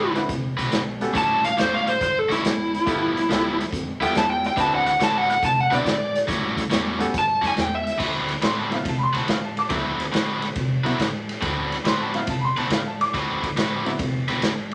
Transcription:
Already playing: A2 D3 C4 F#4 A4 B4
0.15 C4 D4 E4 F#4 B4, snare, closed hi-hat
0.29 C3, kick, snare, closed hi-hat
0.57 B2 D3 C4 F#4 B4, snare, closed hi-hat
0.71 B1, snare, closed hi-hat
1.01 B3 C#4 F#4 G4 A4, snare, closed hi-hat
1.13 A1 A2 G3 C#4 F#4, kick, snare, closed hi-hat
1.18 A5
1.44 F5, snare, closed hi-hat
1.57 E2 A2 G3 C#4 F#4 C5, snare, closed hi-hat
1.74 F5
1.87 C5, snare, closed hi-hat
2.01 G2 C5, kick, snare, closed hi-hat
2.19 A4
2.29 F#2 A2 G3 C#4 E4 F#4, snare, closed hi-hat
2.43 E2, snare, closed hi-hat
2.74 snare, closed hi-hat
2.85 G1 G2 F3 B3 E4 F4 G4 A4, kick, snare, closed hi-hat
3.17 snare, closed hi-hat
3.29 D2 G2 F3 B3 E4 F4 G4 A4, snare, closed hi-hat
3.60 snare, closed hi-hat
3.72 F2, kick, snare, closed hi-hat
4.00 E2 G2 F3 B3 E4 F4 G4 A4 G5, snare, closed hi-hat
4.14 E2 A5, snare, closed hi-hat
4.30 G5
4.44 G5, snare, closed hi-hat
4.56 D2 D3 C4 D4 E4 F#4 B4 A5, kick, snare, closed hi-hat
4.75 F#5
4.86 F#5, snare, closed hi-hat
5.00 A2 D3 C4 F#4 B4 A5, snare, closed hi-hat
5.18 F#5
5.30 F#5, snare, closed hi-hat
5.43 C3 A5, kick, snare, closed hi-hat
5.61 F#5
5.71 B2 D3 C4 D4 E4 F#4 B4 D5, snare, closed hi-hat
5.85 A2, snare, closed hi-hat
6.15 snare, closed hi-hat
6.27 A1 A2 G3 C#4 F#4, kick, snare, closed hi-hat
6.57 kick, snare, closed hi-hat
6.70 E2 A2 G3 C#4 F#4, snare, closed hi-hat
6.99 B3 C#4 F#4 G4 A4, snare, closed hi-hat
7.14 G2, kick, snare, closed hi-hat
7.19 A5
7.42 F#2 A2 G3 C#4 F#4, snare, closed hi-hat
7.48 G#5
7.57 E2, snare, closed hi-hat
7.61 G5
7.75 E5
7.87 snare, closed hi-hat
7.98 D2 D3 C4 F#4 B4, kick, snare, crash
8.28 snare, ride
8.40 A2 D3 C4 F#4 B4 B5, snare, ride
8.45 C6
8.59 A5
8.71 F#3 B3 C4 E4 F5, snare, ride
8.85 C3 A5, kick, snare, ride
8.98 B5
9.03 C6
9.13 B2 D3 C4 F#4 B4 A5, snare, ride
9.28 A2 F5, snare, ride
9.45 A5
9.57 A5 D6, snare, ride
9.70 D2 D3 F#3 B3 C4 E4 F#4 B4, kick, snare, ride
10.00 snare, ride
10.12 A2 D3 C4 F#4 B4, snare, ride
10.42 snare, ride
10.55 C3, kick, snare, ride
10.84 B2 D3 F#3 B3 C4 E4 F#4 B4, snare, ride
10.99 A2, snare, ride
11.29 snare, ride
11.41 D2 D3 C4 F#4 B4, kick, snare, ride
11.72 snare, ride
11.83 A2 D3 C4 F#4 B4 B5, snare, ride
11.88 C6
12.01 A5
12.13 F#3 B3 C4 E4 F5, snare, ride
12.27 C3 A5, kick, snare, ride
12.40 B5
12.45 C6
12.56 B2 D3 C4 F#4 B4 A5, snare, ride
12.70 A2 F5, snare, ride
12.88 A5
13.01 D6, snare, ride
13.14 D2 D3 C4 F#4 B4, kick, snare, ride
13.43 kick, snare, ride
13.55 A2 D3 C4 F#4 B4, snare, ride
13.85 F#3 B3 C4 E4, snare, ride
13.99 C3, kick, snare, ride
14.28 B2 D3 C4 F#4 B4, snare, ride
14.41 A1, snare, ride

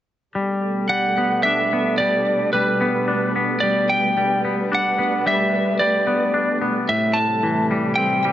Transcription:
0.35 B2 G3 A3 D4 A4
0.89 G3 F#5
1.18 B3
1.43 D4 E5
1.73 B3
1.98 G3 D5
2.53 G3 B4
2.81 B3
3.08 D4
3.36 B3
3.60 G3 B4 D5
3.89 G5
4.17 G3
4.45 B3
4.72 D4 F#5
4.99 B3
5.26 G3 E5
5.79 G3 D5
6.07 B3
6.34 D4
6.62 B3
6.89 A2 C3 G3 E4 A4 E5
7.13 A5
7.43 E3
7.71 G3
7.96 C4 G5
8.25 G3

